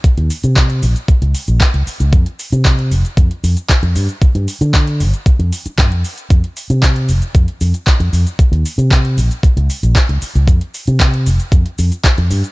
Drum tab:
HH |xxoxxxoxxxoxxxox|xxoxxxoxxxoxxxox|xxoxxxoxxxoxxxox|xxoxxxoxxxoxxxox|
SH |x-xxx-xxx-xxx-xx|x-xxx-xxx-xxx-xx|x-xxx-xxx-xxx-xx|x-xxx-xxx-xxx-xx|
CP |----x-------x---|----x-------x---|----x-------x---|----x-------x---|
BD |o---o---o---o---|o---o---o---o---|o---o---o---o---|o---o---o---o---|

HH |xxoxxxoxxxoxxxox|xxoxxxoxxxoxxxox|
SH |x-xxx-xxx-xxx-xx|x-xxx-xxx-xxx-xx|
CP |----x-------x---|----x-------x---|
BD |o---o---o---o---|o---o---o---o---|